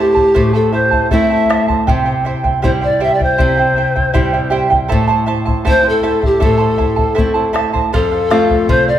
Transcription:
Already playing: nylon-string guitar A2 A3 C4 E4, charango E4 A4 C5 E5 A5
0.00 pan flute G4
0.15 charango E4 C5 A5, bombo low
0.34 nylon-string guitar A2, charango E4 A4 C5 E5 A5, bombo low
0.53 charango E4 C5 A5, pan flute A4
0.72 charango E4 C5 E5 A5, pan flute C5
0.91 charango E4 C5 A5, bombo low
1.11 nylon-string guitar A3 C4 E4, charango E4 A4 C5 E5 A5, pan flute E5, bombo low
1.30 charango E4 C5 A5
1.49 charango E4 A4 C5 E5 A5, bombo rim
1.68 charango E4 C5 A5, bombo low
1.87 nylon-string guitar C3, charango E4 G4 C5 E5 G5, bombo low
2.06 charango E4 C5 G5
2.25 charango E4 C5 E5 G5
2.44 charango E4 C5 G5, bombo low
2.62 nylon-string guitar G3 C4 E4, charango E4 G4 C5 E5 G5, pan flute C5, bombo low
2.81 charango E4 C5 G5, pan flute D5
3.00 charango E4 G4 C5 E5 G5, pan flute E5
3.14 pan flute D5
3.19 charango E4 C5 G5, pan flute C5, bombo low
3.38 nylon-string guitar C3, charango E4 G4 C5 E5 G5, bombo low
3.57 charango E4 C5 G5
3.76 charango E4 C5 E5 G5
3.96 charango E4 C5 G5, bombo low
4.13 nylon-string guitar G3 C4 E4, charango E4 G4 C5 E5 G5, bombo low
4.33 charango E4 C5 G5
4.50 charango E4 G4 C5 E5 G5
4.70 charango E4 C5 G5, bombo low
4.88 nylon-string guitar A2, charango E4 A4 C5 E5 A5, bombo low
5.08 charango E4 C5 A5
5.26 charango E4 C5 E5 A5
5.46 charango E4 C5 A5, bombo low
5.65 nylon-string guitar A3 C4 E4, charango E4 A4 C5 E5 A5, bombo low
5.69 pan flute C5
5.83 charango E4 C5 A5
5.89 pan flute A4
6.03 charango E4 A4 C5 E5 A5
6.21 charango E4 C5 A5, bombo low
6.26 pan flute G4
6.40 nylon-string guitar A2, charango E4 A4 C5 E5 A5, bombo low
6.44 pan flute A4
6.58 charango E4 C5 A5
6.77 charango E4 C5 E5 A5, bombo low
6.96 charango E4 C5 A5, bombo low
7.15 nylon-string guitar A3, charango E4 A4 C5 E5 A5, bombo low
7.19 nylon-string guitar C4 E4
7.34 charango E4 C5 A5
7.53 charango E4 A4 C5 E5 A5, bombo rim
7.73 charango E4 C5 A5, bombo low
7.93 nylon-string guitar F2, charango A4 C5 F5, pan flute A4, bombo low
8.11 charango C5 F5
8.30 nylon-string guitar A3 C4 F4, charango A4 C5 F5, bombo rim
8.48 charango C5 F5, bombo low
8.69 nylon-string guitar C3, charango A4 C5 F5, pan flute C5, bombo low
8.88 charango C5 F5, pan flute D5

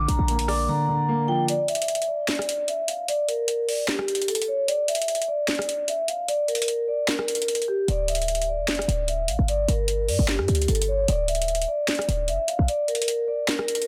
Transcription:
0.08 808-style bass A#1, grand piano D3, vibraphone A#5, closed hi-hat
0.19 808-style bass A#1
0.28 grand piano A#3, closed hi-hat
0.39 closed hi-hat
0.48 grand piano D5, vibraphone D6, cross-stick, open hi-hat
0.68 grand piano D3, vibraphone A#5
0.89 grand piano D3
1.08 grand piano A#3
1.28 grand piano F3, vibraphone G5
1.48 vibraphone D5, closed hi-hat
1.68 vibraphone E5, closed hi-hat
1.75 closed hi-hat
1.82 closed hi-hat
1.88 closed hi-hat
1.95 closed hi-hat
2.02 closed hi-hat
2.08 vibraphone D5
2.28 snare, clap, closed hi-hat
2.35 cross-stick, closed hi-hat
2.42 closed hi-hat
2.49 closed hi-hat
2.68 vibraphone E5, closed hi-hat
2.88 vibraphone F5, closed hi-hat
3.08 vibraphone D5, closed hi-hat
3.28 vibraphone A#4, closed hi-hat
3.48 closed hi-hat
3.68 vibraphone D5, open hi-hat
3.88 vibraphone G4, snare, clap, closed hi-hat
3.99 cross-stick
4.08 closed hi-hat
4.15 closed hi-hat
4.22 closed hi-hat
4.28 vibraphone A4, closed hi-hat
4.35 closed hi-hat
4.42 closed hi-hat
4.48 vibraphone C#5
4.68 vibraphone D5, closed hi-hat
4.88 vibraphone E5, closed hi-hat
4.95 closed hi-hat
5.02 closed hi-hat
5.08 closed hi-hat
5.15 closed hi-hat
5.22 closed hi-hat
5.28 vibraphone D5
5.48 snare, clap, closed hi-hat
5.55 cross-stick, closed hi-hat
5.62 closed hi-hat
5.69 closed hi-hat
5.88 vibraphone E5, closed hi-hat
6.08 vibraphone F5, closed hi-hat
6.28 vibraphone D5, closed hi-hat
6.48 vibraphone A#4, closed hi-hat
6.55 closed hi-hat
6.62 closed hi-hat
6.68 closed hi-hat
6.88 vibraphone D5
7.08 vibraphone A#4, snare, clap, closed hi-hat
7.19 cross-stick
7.28 closed hi-hat
7.35 closed hi-hat
7.42 closed hi-hat
7.48 closed hi-hat
7.55 closed hi-hat
7.62 closed hi-hat
7.68 vibraphone G4
7.88 808-style bass D1, vibraphone D5, closed hi-hat
8.08 vibraphone E5, closed hi-hat
8.15 closed hi-hat
8.22 closed hi-hat
8.28 closed hi-hat
8.35 closed hi-hat
8.42 closed hi-hat
8.48 vibraphone D5
8.59 808-style bass F1
8.68 snare, clap, closed hi-hat
8.75 cross-stick, closed hi-hat
8.82 closed hi-hat
8.88 808-style bass D1, closed hi-hat
9.08 vibraphone E5, closed hi-hat
9.28 808-style bass A1, vibraphone F5, closed hi-hat
9.39 808-style bass G1
9.48 vibraphone D5, closed hi-hat
9.68 808-style bass G1, vibraphone A#4, closed hi-hat
9.88 closed hi-hat
10.08 808-style bass G2, vibraphone D5, open hi-hat
10.19 808-style bass G1
10.28 vibraphone G4, snare, clap
10.39 808-style bass G2, cross-stick
10.48 808-style bass D2, closed hi-hat
10.55 closed hi-hat
10.62 closed hi-hat
10.68 808-style bass G1, vibraphone A4, closed hi-hat
10.75 closed hi-hat
10.82 closed hi-hat
10.88 vibraphone C#5
11.08 808-style bass D1, vibraphone D5, closed hi-hat
11.28 vibraphone E5, closed hi-hat
11.35 closed hi-hat
11.42 closed hi-hat
11.48 closed hi-hat
11.55 closed hi-hat
11.62 closed hi-hat
11.68 vibraphone D5
11.88 snare, clap, closed hi-hat
11.95 cross-stick, closed hi-hat
12.02 closed hi-hat
12.08 808-style bass D1, closed hi-hat
12.28 808-style bass F1, vibraphone E5, closed hi-hat
12.48 vibraphone F5, closed hi-hat
12.59 808-style bass A#1
12.68 vibraphone D5, closed hi-hat
12.88 vibraphone A#4, closed hi-hat
12.95 closed hi-hat
13.02 closed hi-hat
13.08 closed hi-hat
13.28 vibraphone D5
13.48 vibraphone A#4, snare, clap, closed hi-hat
13.59 cross-stick
13.68 closed hi-hat
13.75 closed hi-hat
13.82 closed hi-hat

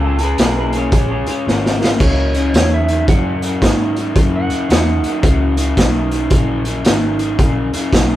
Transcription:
Already playing: fingered electric bass C#2, overdriven electric guitar C#3 G#3
0.05 clean electric guitar F4 A4
0.19 overdriven electric guitar C#3 G#3, clean electric guitar G#4, closed hi-hat
0.23 clean electric guitar B4
0.38 fingered electric bass B1, overdriven electric guitar C#3 A#3, clean electric guitar G#4 B4, snare, closed hi-hat
0.57 clean electric guitar G#4 B4
0.73 overdriven electric guitar C#3 A#3, clean electric guitar G#4, closed hi-hat
0.77 clean electric guitar C#5
0.92 fingered electric bass A#1, overdriven electric guitar C#3 G#3, clean electric guitar G#4 C#5, kick, closed hi-hat
1.11 clean electric guitar G#4 C#5
1.26 overdriven electric guitar C#3 G#3, clean electric guitar C#5, muted fingered electric bass stroke, closed hi-hat
1.47 fingered electric bass G#1, overdriven electric guitar C#3 A#3, snare
1.66 snare
1.81 overdriven electric guitar C#3 A#3, snare
2.00 fingered electric bass C#2, overdriven electric guitar F#2 C#3, electric slide guitar C#5, kick, crash
2.34 overdriven electric guitar F#2 C#3, closed hi-hat
2.54 fingered electric bass E2, overdriven electric guitar F#2 D#3, electric slide guitar C#5, snare, closed hi-hat
2.74 electric slide guitar E5
2.89 overdriven electric guitar F#2 D#3, closed hi-hat
3.08 fingered electric bass F#2, overdriven electric guitar F#2 C#3, electric slide guitar F#5, kick, closed hi-hat
3.42 overdriven electric guitar F#2 C#3, closed hi-hat
3.62 overdriven electric guitar F#2 D#3, fingered electric bass G#2, kick, snare, closed hi-hat
3.96 overdriven electric guitar F#2 D#3, closed hi-hat
4.15 overdriven electric guitar F#2 C#3, fingered electric bass F#2, kick, closed hi-hat
4.36 electric slide guitar F#5
4.50 overdriven electric guitar F#2 C#3, muted fingered electric bass stroke, closed hi-hat
4.69 fingered electric bass E2, overdriven electric guitar F#2 D#3, electric slide guitar F#5, snare, closed hi-hat
5.03 overdriven electric guitar F#2 D#3, muted fingered electric bass stroke, closed hi-hat
5.23 fingered electric bass C#2, overdriven electric guitar F#2 C#3, kick, closed hi-hat
5.57 overdriven electric guitar F#2 C#3, closed hi-hat
5.77 fingered electric bass B1, overdriven electric guitar F#2 D#3, kick, snare, closed hi-hat
6.11 overdriven electric guitar F#2 D#3, closed hi-hat
6.30 fingered electric bass A#1, overdriven electric guitar F#2 C#3, kick, closed hi-hat
6.65 overdriven electric guitar F#2 C#3, closed hi-hat
6.84 fingered electric bass G#1, overdriven electric guitar F#2 D#3, snare, closed hi-hat
7.19 overdriven electric guitar F#2 D#3, closed hi-hat
7.39 fingered electric bass A#1, overdriven electric guitar F#2 C#3, kick, closed hi-hat
7.73 overdriven electric guitar F#2 C#3, muted fingered electric bass stroke, closed hi-hat
7.92 fingered electric bass B1, overdriven electric guitar F#2 D#3, kick, snare, closed hi-hat

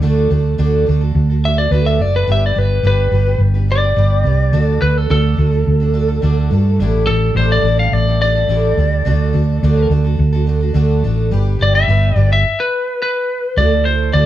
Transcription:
0.01 fingered electric bass D2, twelve-string acoustic guitar D3 A3 D4 F#4 A4
0.30 fingered electric bass D2, twelve-string acoustic guitar A3 D4 F#4 A4
0.58 fingered electric bass D2, twelve-string acoustic guitar D3 A3 D4 F#4 A4
0.86 fingered electric bass D2, twelve-string acoustic guitar A3 D4 F#4 A4
1.01 twelve-string acoustic guitar D4 F#4 A4
1.15 fingered electric bass D2
1.30 twelve-string acoustic guitar D4 F#4 A4
1.43 twelve-string acoustic guitar A3 D4 F#4 A4, lead electric guitar E5
1.58 twelve-string acoustic guitar D4 F#4 A4, lead electric guitar D5
1.71 fingered electric bass D2, twelve-string acoustic guitar D3 A3 D4 F#4 A4, lead electric guitar B4
1.86 lead electric guitar E5
1.98 fingered electric bass F#1, twelve-string acoustic guitar A3 D4 F#4 A4, lead electric guitar D5
2.16 lead electric guitar B4
2.27 fingered electric bass G1, twelve-string acoustic guitar G3 D4 G4 B4
2.32 lead electric guitar E5
2.46 lead electric guitar D5
2.55 fingered electric bass G1, twelve-string acoustic guitar G3 D4 G4 B4, lead electric guitar B4
2.83 fingered electric bass G1, twelve-string acoustic guitar G3 D4 G4 B4, lead electric guitar B4
3.11 fingered electric bass G1, twelve-string acoustic guitar G3 D4 G4 B4
3.25 twelve-string acoustic guitar D4 G4 B4
3.38 fingered electric bass G1
3.54 twelve-string acoustic guitar D4 G4 B4
3.68 twelve-string acoustic guitar G3 D4 G4 B4, lead electric guitar D5
3.82 twelve-string acoustic guitar D4 G4 B4
3.96 fingered electric bass G1, twelve-string acoustic guitar G3 D4 G4 B4
4.24 fingered electric bass C2, twelve-string acoustic guitar G3 D4 G4 B4
4.52 fingered electric bass D2, twelve-string acoustic guitar D3 A3 D4 F#4 A4
4.81 fingered electric bass D2, twelve-string acoustic guitar A3 D4 F#4 A4, lead electric guitar B4
4.98 lead electric guitar A4
5.10 fingered electric bass D2, twelve-string acoustic guitar D3 A3 D4 F#4 A4, lead electric guitar A4
5.36 fingered electric bass D2, twelve-string acoustic guitar A3 D4 F#4 A4
5.51 twelve-string acoustic guitar D4 F#4 A4
5.67 fingered electric bass D2
5.80 twelve-string acoustic guitar D4 F#4 A4
5.93 twelve-string acoustic guitar A3 D4 F#4 A4
6.08 twelve-string acoustic guitar D4 F#4 A4
6.22 fingered electric bass D2, twelve-string acoustic guitar D3 A3 D4 F#4 A4
6.51 fingered electric bass G2, twelve-string acoustic guitar A3 D4 F#4 A4
6.79 fingered electric bass A1, twelve-string acoustic guitar A2 D3 G3 D4 E4 A4
7.07 fingered electric bass A1, twelve-string acoustic guitar G3 D4 E4 A4, lead electric guitar A4
7.35 fingered electric bass A1, twelve-string acoustic guitar A2 D3 G3 D4, lead electric guitar C5
7.39 twelve-string acoustic guitar E4 A4
7.52 lead electric guitar D5
7.62 fingered electric bass A1, twelve-string acoustic guitar G3
7.67 twelve-string acoustic guitar D4 E4 A4
7.79 twelve-string acoustic guitar G3 D4 E4 A4, lead electric guitar F5
7.92 fingered electric bass A1, lead electric guitar D5
8.07 twelve-string acoustic guitar G3 D4 E4 A4
8.22 twelve-string acoustic guitar G3 D4 E4 A4, lead electric guitar D5
8.35 twelve-string acoustic guitar G3 D4 E4 A4
8.47 fingered electric bass A1, twelve-string acoustic guitar A2 D3 G3 D4 E4 A4
8.77 fingered electric bass D2, twelve-string acoustic guitar G3 D4 E4 A4
9.05 fingered electric bass D2, twelve-string acoustic guitar D3 A3 D4 F#4 A4
9.33 fingered electric bass D2, twelve-string acoustic guitar A3 D4 F#4 A4
9.63 fingered electric bass D2, twelve-string acoustic guitar D3 A3 D4 F#4 A4
9.90 fingered electric bass D2, twelve-string acoustic guitar A3 D4 F#4 A4
10.04 twelve-string acoustic guitar D4 F#4 A4
10.19 fingered electric bass D2
10.33 twelve-string acoustic guitar D4 F#4 A4
10.47 twelve-string acoustic guitar A3 D4 F#4 A4
10.61 twelve-string acoustic guitar D4 F#4 A4
10.74 fingered electric bass D2, twelve-string acoustic guitar D3 A3 D4 F#4 A4
11.04 fingered electric bass A1, twelve-string acoustic guitar A3 D4 F#4 A4
11.31 fingered electric bass G1, twelve-string acoustic guitar G3 D4 G4 B4
11.59 fingered electric bass G1, twelve-string acoustic guitar G3 D4 G4 B4, lead electric guitar D5
11.75 lead electric guitar E5
11.87 fingered electric bass G1, twelve-string acoustic guitar G3 D4 G4 B4
12.16 fingered electric bass G1, twelve-string acoustic guitar G3 D4 G4 B4, lead electric guitar D5
12.29 twelve-string acoustic guitar D4 G4 B4, lead electric guitar E5
12.60 lead electric guitar B4
13.02 lead electric guitar B4
13.57 fingered electric bass D2, twelve-string acoustic guitar D3 A3 E4 F#4 A4, lead electric guitar D5
13.71 twelve-string acoustic guitar E4 F#4 A4
13.85 twelve-string acoustic guitar A3 E4 F#4 A4, lead electric guitar C5
14.12 fingered electric bass D2, twelve-string acoustic guitar D3 A3 E4 F#4 A4, lead electric guitar D5

